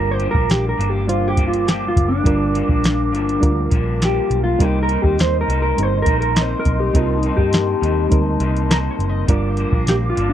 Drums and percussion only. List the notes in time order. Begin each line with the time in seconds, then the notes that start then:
0.20 closed hi-hat
0.34 kick
0.50 snare, closed hi-hat
0.81 closed hi-hat
1.09 closed hi-hat
1.37 kick, closed hi-hat
1.53 closed hi-hat
1.68 snare, closed hi-hat
1.97 kick, closed hi-hat
2.25 kick, closed hi-hat
2.55 closed hi-hat
2.69 kick
2.84 snare, closed hi-hat
3.15 closed hi-hat
3.29 closed hi-hat
3.43 kick, closed hi-hat
3.71 kick, closed hi-hat
4.02 snare, closed hi-hat
4.31 closed hi-hat
4.60 kick, closed hi-hat
4.89 closed hi-hat
5.04 kick
5.19 snare, closed hi-hat
5.50 closed hi-hat
5.78 closed hi-hat
6.06 kick, closed hi-hat
6.22 closed hi-hat
6.36 snare, closed hi-hat
6.65 kick, closed hi-hat
6.94 kick, closed hi-hat
7.23 closed hi-hat
7.38 kick
7.53 snare, closed hi-hat
7.83 closed hi-hat
8.12 kick, closed hi-hat
8.40 closed hi-hat
8.56 closed hi-hat
8.71 snare, closed hi-hat
9.00 closed hi-hat
9.28 kick, closed hi-hat
9.57 closed hi-hat
9.72 kick
9.87 snare, closed hi-hat
10.17 closed hi-hat